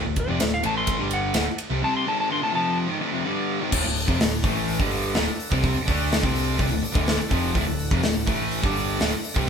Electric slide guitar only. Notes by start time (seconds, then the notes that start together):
0.20 C5
0.30 D5
0.54 F5
0.66 A5
0.77 C6
1.13 F#5
1.84 A5
1.97 C6
2.08 A5
2.20 A5
2.32 C6
2.43 A5
2.55 A5